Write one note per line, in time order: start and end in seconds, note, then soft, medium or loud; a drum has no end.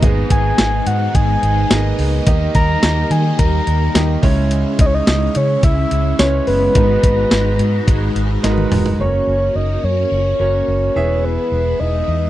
0.00 0.23 G#1 loud
0.00 0.82 G#2 medium
0.00 2.25 D#3 medium
0.00 1.13 G#3 medium
0.00 2.24 G#3 medium
0.00 2.24 B3 medium
0.00 1.04 B3 medium
0.00 4.19 D#4 medium
0.00 1.04 D#4 medium
0.00 1.15 D#4 medium
0.00 1.04 G#4 medium
0.00 1.04 D#5 medium
0.00 kick loud
0.00 closed hi-hat medium
0.06 1.15 G#4 medium
0.30 0.51 G#1 loud
0.30 0.88 G#5 loud
0.30 kick medium
0.30 closed hi-hat medium
0.58 0.79 G#1 medium
0.58 snare loud
0.58 closed hi-hat medium
0.58 tambourine medium
0.86 1.07 G#2 loud
0.86 1.16 F#5 loud
0.86 closed hi-hat medium
1.14 1.35 G#1 loud
1.14 1.98 G#3 medium
1.14 2.00 D#4 medium
1.14 1.97 G#4 medium
1.14 2.27 G#5 loud
1.14 kick medium
1.14 closed hi-hat medium
1.43 1.63 G#1 medium
1.43 closed hi-hat medium
1.70 1.91 G#1 loud
1.70 1.77 A#3 medium
1.70 2.21 D#4 medium
1.70 2.22 G#4 medium
1.70 2.22 D#5 medium
1.70 snare loud
1.70 closed hi-hat medium
1.70 tambourine medium
1.77 2.24 B3 medium
1.98 2.19 C#2 medium
1.98 2.28 D#4 soft
1.98 2.26 G#4 medium
1.98 open hi-hat medium
2.25 2.47 D#2 loud
2.25 3.36 D#3 medium
2.25 3.07 D#3 medium
2.25 4.21 G3 medium
2.25 4.21 A#3 medium
2.25 3.28 A#3 medium
2.25 3.38 A#3 medium
2.25 3.28 D#4 medium
2.25 3.29 G4 medium
2.25 3.29 D#5 medium
2.25 kick loud
2.25 closed hi-hat medium
2.30 3.39 D#4 medium
2.55 2.75 D#2 loud
2.55 3.13 A#5 loud
2.55 kick loud
2.55 closed hi-hat medium
2.83 3.03 D#2 medium
2.83 snare loud
2.83 closed hi-hat medium
2.83 tambourine medium
3.10 3.31 D#3 medium
3.10 3.38 G#5 loud
3.10 closed hi-hat medium
3.38 3.59 D#2 loud
3.38 4.22 D#3 medium
3.38 4.23 A#3 medium
3.38 4.21 D#4 medium
3.38 4.47 A#5 loud
3.38 kick medium
3.38 closed hi-hat medium
3.67 3.87 D#2 medium
3.67 closed hi-hat medium
3.94 4.15 D#2 loud
3.94 4.23 A#3 medium
3.94 4.23 D#4 medium
3.94 4.23 G4 medium
3.94 4.23 D#5 medium
3.94 snare loud
3.94 closed hi-hat loud
3.94 tambourine medium
4.21 4.63 C#2 medium
4.21 5.03 C#3 medium
4.21 5.24 G#3 medium
4.21 6.73 G#3 medium
4.21 5.64 G#3 medium
4.21 5.62 C#4 medium
4.21 6.73 C#4 medium
4.21 5.25 C#4 medium
4.21 6.73 E4 medium
4.21 5.25 E4 medium
4.21 5.25 C#5 loud
4.21 kick loud
4.21 open hi-hat medium
4.27 5.60 C#3 medium
4.51 closed hi-hat medium
4.79 4.99 C#2 loud
4.79 4.88 D#5 loud
4.79 kick medium
4.79 closed hi-hat medium
4.86 4.96 C#5 medium
4.94 5.38 D#5 loud
5.07 5.27 C#2 loud
5.07 snare loud
5.07 closed hi-hat medium
5.07 tambourine medium
5.35 5.56 C#3 loud
5.35 5.64 C#5 medium
5.35 closed hi-hat medium
5.61 5.83 C#2 loud
5.61 6.74 C#3 medium
5.61 6.74 G#3 medium
5.61 6.16 E5 loud
5.61 kick medium
5.61 closed hi-hat medium
5.67 6.75 C#4 medium
5.91 6.12 C#2 medium
5.91 closed hi-hat medium
6.19 6.39 C#2 medium
6.19 6.70 G#3 medium
6.19 6.70 C#4 medium
6.19 6.70 E4 medium
6.19 6.26 B4 medium
6.19 6.45 C#5 loud
6.19 snare medium
6.19 closed hi-hat medium
6.19 tambourine medium
6.27 6.74 C#5 medium
6.47 6.67 F#1 medium
6.47 8.40 B4 loud
6.47 open hi-hat medium
6.74 6.96 G#1 loud
6.74 7.56 G#2 medium
6.74 7.29 G#3 medium
6.74 8.97 G#3 medium
6.74 7.77 G#3 medium
6.74 8.97 D#4 medium
6.74 7.32 D#4 medium
6.74 7.77 D#4 medium
6.74 8.97 F#4 medium
6.74 7.77 F#4 medium
6.74 7.32 G#4 medium
6.74 6.82 A#4 medium
6.74 8.97 B4 medium
6.74 8.97 A#5 medium
6.74 kick loud
6.74 closed hi-hat medium
6.83 7.81 B4 medium
7.03 7.23 G#1 loud
7.03 kick loud
7.03 closed hi-hat medium
7.31 7.60 G#1 medium
7.31 7.84 G#3 medium
7.31 7.87 D#4 medium
7.31 7.89 G#4 medium
7.31 snare loud
7.31 closed hi-hat medium
7.31 tambourine medium
7.59 7.79 G#2 medium
7.59 closed hi-hat medium
7.86 8.08 G#1 loud
7.86 8.99 G#3 medium
7.86 9.00 D#4 medium
7.86 kick medium
7.86 closed hi-hat medium
7.90 9.01 G#4 loud
8.15 8.36 G#1 medium
8.15 closed hi-hat medium
8.43 8.64 G#1 loud
8.43 8.94 G#3 medium
8.43 8.94 D#4 medium
8.43 8.95 F#4 medium
8.43 8.50 A#4 medium
8.43 snare medium
8.43 closed hi-hat medium
8.51 8.98 B4 medium
8.58 high tom medium
8.71 8.92 E1 medium
8.71 mid tom medium
8.71 open hi-hat medium
8.86 floor tom medium
8.99 9.19 F#1 loud
8.99 10.93 A#3 medium
8.99 10.01 A#3 medium
8.99 10.94 C#4 medium
8.99 10.02 C#4 medium
8.99 10.93 F#4 medium
8.99 10.02 F#4 medium
8.99 9.57 C#5 loud
8.99 10.02 C#5 medium
9.27 9.47 F#1 loud
9.55 9.76 F#1 medium
9.55 9.86 D#5 medium
9.84 10.04 F#2 medium
9.84 11.26 C#5 loud
10.12 10.32 F#1 loud
10.40 10.60 F#1 medium
10.40 10.96 A#3 medium
10.40 10.96 C#4 medium
10.40 10.96 F#4 medium
10.40 10.96 C#5 medium
10.68 10.88 F#1 medium
10.95 11.36 E1 medium
10.95 11.76 E3 medium
10.95 12.30 G#3 medium
10.95 12.30 B3 medium
10.95 11.97 B3 medium
10.95 12.30 E4 medium
10.95 11.98 E4 medium
10.95 11.98 G#4 medium
10.95 11.98 E5 loud
11.25 11.81 B4 loud
11.52 11.72 E1 loud
11.80 12.00 E1 medium
11.80 12.30 D#5 loud
12.08 12.28 E2 medium